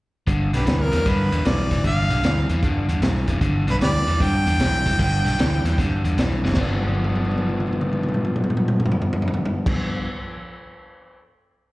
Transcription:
0.27 G1 G2 D3, kick, closed hi-hat
0.53 B1 G2 D3 G4 B4, snare, closed hi-hat
0.66 D2 G2 E3, snare, closed hi-hat
0.82 A#4
0.92 E2 G2 E3, snare, closed hi-hat
1.05 G2 D3 B4, kick, snare, closed hi-hat
1.32 E2 G2 D3, closed hi-hat
1.45 B1 G2 E3 D5, snare, closed hi-hat
1.70 F1 G2 E3, kick, closed hi-hat
1.84 G1 G2 D3 F5, kick, closed hi-hat
2.10 B1 G2 D3, closed hi-hat
2.23 D2 G2 E3, snare, closed hi-hat
2.49 E2 G2 E3, closed hi-hat
2.63 G2 D3, kick, closed hi-hat
2.88 E2 G2 D3, closed hi-hat
3.02 B1 G2 E3, snare, closed hi-hat
3.28 F1 G2 E3, kick, closed hi-hat
3.41 G1 G2 D3, kick, closed hi-hat
3.67 B1 G2 D3 B4, snare, closed hi-hat
3.81 D2 G2 E3 G4 B4 D5, snare, closed hi-hat
4.07 E2 G2 E3, snare, closed hi-hat
4.20 G2 D3 G5, kick, snare, closed hi-hat
4.46 E2 G2 D3, closed hi-hat
4.59 B1 G2 E3, snare, closed hi-hat
4.86 F1 G2 E3, kick, closed hi-hat
4.98 G1 G2 D3, kick, snare, closed hi-hat
5.24 B1 G2 D3, closed hi-hat
5.38 D2 G2 E3, snare, closed hi-hat
5.64 E2 G2 E3, snare, closed hi-hat
5.78 G2 D3, kick, snare, closed hi-hat
6.04 E2 G2 D3, closed hi-hat
6.17 B1 G2 E3, snare, closed hi-hat
6.43 F1 G2 E3, snare
6.54 G1 G2 F3, kick, snare, crash
6.58 B3 D4
6.83 high tom
6.89 high tom
6.95 high tom
7.04 high tom
7.15 high tom
7.25 high tom
7.31 high tom
7.38 high tom
7.49 mid tom
7.60 mid tom
7.67 mid tom
7.73 mid tom
7.81 mid tom
7.93 mid tom
8.03 mid tom
8.09 mid tom
8.14 mid tom
8.25 mid tom
8.36 mid tom
8.44 mid tom
8.50 mid tom
8.57 mid tom
8.68 mid tom
8.80 mid tom
8.86 floor tom
8.92 floor tom
9.02 floor tom
9.13 floor tom
9.22 floor tom
9.28 floor tom
9.34 floor tom
9.45 floor tom
9.66 kick, crash

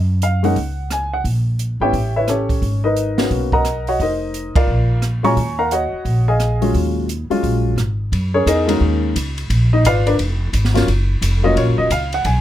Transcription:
Already playing: F#2
0.22 F5, closed hi-hat
0.43 G#3 A#3 C#4 D#4 F#5, open hi-hat
0.56 C#2, kick, open hi-hat
0.91 G#5, cross-stick, closed hi-hat
1.14 F#5
1.24 A#1, kick, open hi-hat
1.59 closed hi-hat
1.80 G#1 G3 B3 C#4 E4 G4 C#5 E5 G5
1.93 A1, kick, open hi-hat
2.16 E4 B4 C#5 E5
2.24 C5, cross-stick, closed hi-hat
2.29 C#4 G4 A4 C#5
2.49 kick, open hi-hat
2.62 G#1, kick, open hi-hat
2.84 D#4 A#4 B4 D#5
2.97 closed hi-hat
3.18 A#3 B3 C#4 F#4, snare, open hi-hat
3.30 B1, kick, open hi-hat
3.52 A#4 D#5 F#5 A#5, kick
3.65 cross-stick, closed hi-hat
3.87 F#4 C#5 D#5 F#5, open hi-hat
4.00 F1 D#4 A#4 C5 D#5, kick, open hi-hat
4.34 closed hi-hat
4.56 F4 A#4 D5 F5, muted upright bass stroke, kick, ride
4.67 A#1
5.02 cross-stick, closed hi-hat
5.23 A#2 F#3 G#3 C#4 F4 C#5 G#5 A#5 C#6, open hi-hat
5.37 D#2, kick, open hi-hat
5.59 A#4 F5 F#5 A#5
5.71 F#4 C#5 D#5 F#5, closed hi-hat
5.93 muted upright bass stroke
6.05 A#1, kick, open hi-hat
6.28 G#4 D#5 F5 G#5
6.40 cross-stick, closed hi-hat
6.61 F#3 G#3 C#4 F4, open hi-hat
6.74 D#2, kick, open hi-hat
7.09 closed hi-hat
7.30 F#3 G#3 C#4 F4, muted upright bass stroke, open hi-hat
7.43 A#1, kick, open hi-hat
7.76 G#1, cross-stick, closed hi-hat
8.12 F#2, kick, ride
8.34 C#4 G#4 A#4 C#5
8.46 E2 D#4 G#4 A#4 D#5, kick, hi-hat pedal, ride
8.64 G#3 A#3 C#4 D#4 A4
8.69 F#4 A#4, ride
8.81 D#2, kick
9.15 C#2, kick, hi-hat pedal, ride
9.38 ride
9.50 A#1, kick, ride
9.73 D#4 D#5
9.84 G#1 F4 B4 D5 F5, kick, hi-hat pedal, ride
10.06 D4 A#4 B4 D5, ride
10.19 F1, kick, ride
10.53 G#1, kick, hi-hat pedal, ride
10.65 snare
10.74 F#3 A#3 C#4 F4, snare, ride
10.87 F#1, kick, ride
11.21 F1, kick, hi-hat pedal, ride
11.43 F#3 A#3 C#4 F4 D#5
11.56 A#1 C#5, kick, ride
11.67 F#1
11.78 D#1 D#5
11.90 C#2 F5, kick, hi-hat pedal, ride
12.12 F#5, ride
12.25 B1 G#5, kick, ride

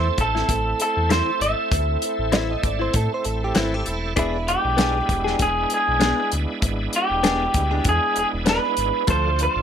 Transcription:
Already playing: E2 A3 C4 E4 A4 C5
0.18 A1 A4, kick, closed hi-hat
0.35 C4 E4, snare
0.49 A1, kick, closed hi-hat
0.80 A4, closed hi-hat
0.97 E2
1.09 E3 C4 E4 C5, snare, closed hi-hat
1.40 G#1 E5, closed hi-hat
1.71 D2, kick, closed hi-hat
2.02 closed hi-hat
2.19 A1
2.32 E3 C4 E4 E5, snare, closed hi-hat
2.51 D#5
2.63 G#1 D5, kick, closed hi-hat
2.79 C4 E4 C5
2.94 A2 A4, kick, closed hi-hat
3.14 C5
3.24 A1 A4, closed hi-hat
3.44 G4
3.55 G#1 E3 C4 E4, snare, closed hi-hat
3.74 G4
3.86 E1 E4, closed hi-hat
4.16 E1 G#3 B3 D4 E4 G#4, kick, closed hi-hat
4.48 G4, closed hi-hat
4.64 B1
4.77 B3 D4 G#4, snare, closed hi-hat
5.09 E1, kick, closed hi-hat
5.24 D4 G#4, snare
5.39 E1 G#4, kick, closed hi-hat
5.70 closed hi-hat
5.74 G#4
5.88 B1
6.00 B3 D4 G#4, snare, closed hi-hat
6.32 D2, closed hi-hat
6.62 G#1, kick, closed hi-hat
6.93 G4, closed hi-hat
7.10 E1
7.23 B3 D4 G#4, snare, closed hi-hat
7.54 D2, kick, closed hi-hat
7.71 D4 G#4
7.84 E2, kick, closed hi-hat
7.89 G#4
8.16 E1 G#4, closed hi-hat
8.33 E1
8.46 B3 D4 G#4 B4, snare, closed hi-hat
8.77 G#1, closed hi-hat
9.07 D2 F3 A3 D4 F4 A4 C5, kick, closed hi-hat
9.39 closed hi-hat
9.43 C5
9.56 A1

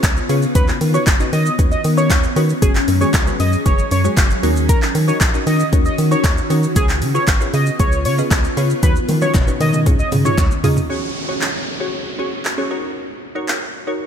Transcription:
Already playing: C#3 B3 C#4 F4 G#4 B4 C#5
0.03 C#2, kick, clap, closed hi-hat, shaker
0.17 shaker
0.29 C#3 C#4 F4 G#4 B4 C#5, open hi-hat, shaker
0.42 shaker
0.55 D#2 D#3 C#4 D#4 F#4 B4 C#5, kick, closed hi-hat, shaker
0.68 clap, shaker
0.81 D#3, open hi-hat, shaker
0.94 C#4 D#4 F#4 B4 C#5, shaker
1.07 F#1, kick, clap, closed hi-hat, shaker
1.20 C#4 D#4 F#4 B4 D#5, shaker
1.33 D#3 D#5, open hi-hat, shaker
1.46 shaker
1.58 D#2 C#4 D#4 F#4 B4 C#5, kick, closed hi-hat, shaker
1.72 D#5, shaker
1.84 D#3, open hi-hat, shaker
1.97 C#4 D#4 F#4 B4 C#5, shaker
2.10 D#2, kick, clap, closed hi-hat, shaker
2.23 shaker
2.36 D#3 C#4 D#4 F#4 B4 C#5, open hi-hat, shaker
2.49 shaker
2.62 F#1 F#3 G#3 C#4 F#4 G#4 C#5, kick, closed hi-hat, shaker
2.75 clap, shaker
2.88 F#2, open hi-hat, shaker
3.01 G#3 C#4 F#4 G#4 C#5, shaker
3.14 C#2, kick, clap, closed hi-hat, shaker
3.27 G#3 C#4 F#4 G#4 B4, shaker
3.40 F#2 D#5, open hi-hat, shaker
3.53 shaker
3.66 F#1 G#3 C#4 F#4 G#4 B4 C#5, kick, closed hi-hat, shaker
3.78 shaker
3.91 F#2 C#5, open hi-hat, shaker
4.04 G#3 C#4 F#4 G#4 C#5, shaker
4.17 F#1, kick, clap, closed hi-hat, shaker
4.30 shaker
4.43 D#2 D#3 C#4 D#4 F#4 A#4 C#5, open hi-hat, shaker
4.56 shaker
4.69 A#4, kick, closed hi-hat, shaker
4.82 clap, shaker
4.95 D#3, open hi-hat, shaker
5.08 C#4 D#4 F#4 A#4 C#5 D#5, shaker
5.21 A#1, kick, clap, closed hi-hat, shaker
5.34 C#4 D#4 F#4 A#4 D#5, shaker
5.47 D#3 D#5, open hi-hat, shaker
5.60 shaker
5.72 D#2 C#4 D#4 F#4 A#4 C#5, kick, closed hi-hat, shaker
5.85 D#5, shaker
5.98 D#3, open hi-hat, shaker
6.11 C#4 D#4 F#4 A#4 C#5, shaker
6.24 D#2, kick, clap, closed hi-hat, shaker
6.37 shaker
6.50 D#3 C#4 D#4 F#4 A#4 C#5, open hi-hat, shaker
6.63 shaker
6.76 C#2 C#3 B3 C#4 F4 G#4 B4 C#5, kick, closed hi-hat, shaker
6.89 clap, shaker
7.02 C#3, open hi-hat, shaker
7.14 C#4 F4 G#4 B4 C#5, shaker
7.27 G#1, kick, clap, closed hi-hat, shaker
7.41 C#4 F4 G#4 B4 C#5, shaker
7.54 C#3 D#5, open hi-hat, shaker
7.66 shaker
7.79 C#2 C#4 F4 G#4 B4 C#5, kick, closed hi-hat, shaker
7.92 shaker
8.05 C#3 C#5, open hi-hat, shaker
8.18 C#4 F4 G#4 B4 D#5, shaker
8.31 C#2, kick, clap, closed hi-hat, shaker
8.44 shaker
8.57 C#3 C#4 F4 G#4 B4 C#5, open hi-hat, shaker
8.70 shaker
8.83 D#2 D#3 C#4 D#4 F#4 B4 C#5, kick, closed hi-hat, high tom, shaker
8.96 shaker
9.09 D#3, open hi-hat, high tom, shaker
9.22 C#4 D#4 F#4 B4 C#5, high tom, shaker
9.34 F#1, kick, clap, closed hi-hat, mid tom, shaker
9.47 C#4 D#4 F#4 B4 C#5, shaker
9.61 D#3 D#5, open hi-hat, mid tom, shaker
9.73 mid tom, shaker
9.86 C#2 C#4 D#4 F4 G#4 C#5, kick, closed hi-hat, mid tom, shaker
9.99 D#5, shaker
10.12 C#3, mid tom, open hi-hat, shaker
10.25 C#4 D#4 F4 G#4 C#5, mid tom, shaker
10.38 C#2, kick, clap, closed hi-hat, floor tom, shaker
10.51 shaker
10.64 C#3 C#4 D#4 F4 G#4 D#5, floor tom, open hi-hat, shaker
10.77 floor tom, shaker
10.90 C#4 F#4 G#4 C#5, downlifter
11.28 C#4 F#4 G#4 C#5
11.41 clap
11.80 C#4 F#4 G#4 C#5
12.19 C#4 F#4 G#4 C#5
12.45 clap
12.58 C#4 F#4 G#4 C#5
12.71 D#4 F#4 A#4 C#5
13.35 D#4 F#4 A#4 C#5
13.48 clap
13.87 D#4 F#4 A#4 C#5

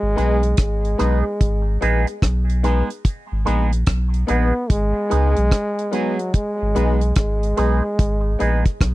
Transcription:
Already playing: G#3
0.03 G#1
0.16 B1 G#3 B3 D#4 G#4 B4, closed hi-hat
0.43 closed hi-hat
0.57 G#1 G#3, kick, cross-stick, closed hi-hat
0.85 closed hi-hat
0.98 B1 G#3 B3 D#4 G#4 B4, cross-stick, closed hi-hat
1.41 G#1, kick, closed hi-hat
1.81 A#1 G#3 B3 D#4 G#4 B4, closed hi-hat
2.07 muted clean electric guitar stroke, closed hi-hat
2.22 B1, kick, cross-stick, closed hi-hat
2.50 closed hi-hat
2.63 G#3 B3 D#4 G#4 B4, closed hi-hat
2.90 closed hi-hat
3.05 kick, closed hi-hat
3.32 G#1
3.45 A#1 G#3 B3 D#4 G#4 B4, closed hi-hat
3.73 closed hi-hat
3.86 B1, kick, cross-stick, closed hi-hat
4.14 closed hi-hat
4.27 A#1 G#3 B3 D#4 G#4 B4, closed hi-hat
4.70 G#1 G#3, kick, closed hi-hat
5.09 C#2 G#3 B3 D#4 G#4 B4, closed hi-hat
5.37 B1, muted clean electric guitar stroke, closed hi-hat
5.51 kick, cross-stick, closed hi-hat
5.79 closed hi-hat
5.91 F#3 G#3 B3 D#4 G#4 B4, closed hi-hat
6.19 G#4 B4, closed hi-hat
6.34 G#3, kick, closed hi-hat
6.62 G#1
6.75 B1 G#3 B3 D#4 G#4 B4, closed hi-hat
7.01 closed hi-hat
7.16 G#1 G#3, kick, cross-stick, closed hi-hat
7.43 closed hi-hat
7.57 B1 G#3 B3 D#4 G#4 B4, closed hi-hat
7.99 G#1, kick, closed hi-hat
8.39 A#1 G#3 B3 D#4 G#4 B4, closed hi-hat
8.65 muted clean electric guitar stroke, kick, closed hi-hat
8.81 B1, kick, cross-stick, closed hi-hat

